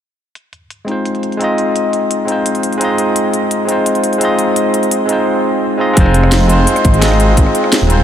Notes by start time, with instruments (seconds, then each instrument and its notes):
0.35 closed hi-hat
0.53 closed hi-hat
0.70 closed hi-hat
0.85 tine electric piano G#3 C4 D#4, closed hi-hat
0.90 tine electric piano F4 C5
1.05 closed hi-hat
1.15 closed hi-hat
1.23 closed hi-hat
1.32 closed hi-hat
1.37 tine electric piano G#3 C4 D#4, closed hi-hat
1.42 tine electric piano F4 D#5
1.58 closed hi-hat
1.76 closed hi-hat
1.93 closed hi-hat
2.11 closed hi-hat
2.25 tine electric piano G#3 C4 D#4, closed hi-hat
2.30 tine electric piano F4 C5
2.46 closed hi-hat
2.55 closed hi-hat
2.63 closed hi-hat
2.73 closed hi-hat
2.78 tine electric piano G#3 C4 D#4, closed hi-hat
2.83 tine electric piano F4 D#5
2.98 closed hi-hat
3.16 closed hi-hat
3.33 closed hi-hat
3.51 closed hi-hat
3.65 tine electric piano G#3 C4 D#4, closed hi-hat
3.70 tine electric piano F4 C5
3.86 closed hi-hat
3.95 closed hi-hat
4.04 closed hi-hat
4.13 closed hi-hat
4.18 tine electric piano G#3 C4 D#4, closed hi-hat
4.23 tine electric piano F4 D#5
4.39 closed hi-hat
4.56 closed hi-hat
4.74 closed hi-hat
4.83 closed hi-hat
4.91 closed hi-hat
5.06 tine electric piano G#3 C4 D#4, closed hi-hat
5.11 tine electric piano F4 C5
5.78 tine electric piano G#3 C4 D#4 F4 D#5
5.93 detuned saw bass F1, tine electric piano G#3 C4 D#4, kick, closed hi-hat
5.99 tine electric piano F4 C5
6.06 cross-stick
6.14 closed hi-hat
6.23 cross-stick
6.32 snare, closed hi-hat
6.46 tine electric piano G#3 C4 D#4, closed hi-hat
6.51 tine electric piano F4 C5
6.67 closed hi-hat
6.76 cross-stick, closed hi-hat
6.85 detuned saw bass G#1, kick, closed hi-hat
6.94 closed hi-hat
6.99 tine electric piano G#3 C4 D#4, snare, closed hi-hat
7.04 tine electric piano F4 D#5
7.11 cross-stick
7.20 closed hi-hat
7.37 kick, closed hi-hat
7.46 cross-stick
7.55 closed hi-hat
7.64 cross-stick
7.72 snare, closed hi-hat
7.81 detuned saw bass D#1
7.86 tine electric piano G#3 C4 D#4, closed hi-hat
7.92 tine electric piano F4 C5